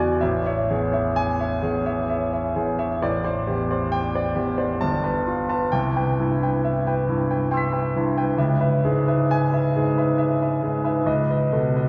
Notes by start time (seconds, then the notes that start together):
Already playing: E2 F#4 G#5
0.00 D5
0.21 A1 E5
0.46 C#5 E5
0.70 E2 G#4
0.92 C#5 E5
1.16 G#5
1.40 C#5 E5
1.62 E2 G#4
1.86 C#5 E5
2.10 E5
2.33 C#5 E5
2.56 E2 G#4
2.79 C#5 E5
3.02 A1 D5
3.24 C5 D5
3.47 E2 G4
3.70 C5 D5
3.92 G5
4.15 C5 D5
4.36 E2 G4
4.57 C5 D5
4.81 G1 A5
5.04 B4 A5
5.27 F4
5.49 B4 A5
5.72 C2 G5
5.96 B4 G5
6.19 G2 E4
6.42 B4 G5
6.65 E5
6.87 B4 G5
7.08 G2 E4
7.31 B4 G5
7.51 G5 C6 E6
7.57 B6
7.72 B4 G5
7.96 G2 E4
8.17 B4 G5
8.38 C#2 E5
8.61 B4 E5
8.84 G#2 G#4
9.08 B4 E5
9.31 G#5
9.53 B4 E5
9.76 G#2 G#4
9.98 B4 E5
10.18 E5
10.42 B4 E5
10.63 G#2 G#4
10.84 B4 E5
11.06 C#2 D#5
11.30 B4 D#5
11.52 B2 A4
11.76 B4 D#5